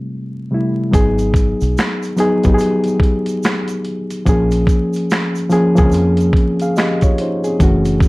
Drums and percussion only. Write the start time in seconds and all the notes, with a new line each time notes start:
0.93 kick, closed hi-hat, shaker
1.19 closed hi-hat, shaker
1.34 kick, closed hi-hat, shaker
1.61 closed hi-hat, shaker
1.78 finger snap, snare, closed hi-hat, shaker
2.03 closed hi-hat, shaker
2.17 closed hi-hat, shaker
2.43 kick, closed hi-hat, shaker
2.59 closed hi-hat, shaker
2.84 closed hi-hat, shaker
3.00 kick, closed hi-hat
3.26 closed hi-hat, shaker
3.43 finger snap, snare, closed hi-hat, shaker
3.68 closed hi-hat, shaker
3.85 closed hi-hat
4.10 closed hi-hat, shaker
4.26 kick, closed hi-hat, shaker
4.51 closed hi-hat, shaker
4.67 kick, closed hi-hat, shaker
4.94 closed hi-hat, shaker
5.10 finger snap, snare, closed hi-hat, shaker
5.35 closed hi-hat, shaker
5.50 closed hi-hat, shaker
5.76 kick, closed hi-hat, shaker
5.92 closed hi-hat, shaker
6.17 closed hi-hat, shaker
6.33 kick, closed hi-hat
6.59 closed hi-hat, shaker
6.76 finger snap, snare, closed hi-hat, shaker
7.01 kick, closed hi-hat, shaker
7.18 closed hi-hat
7.44 closed hi-hat, shaker
7.60 kick, closed hi-hat, shaker
7.85 closed hi-hat, shaker
8.00 kick, closed hi-hat, shaker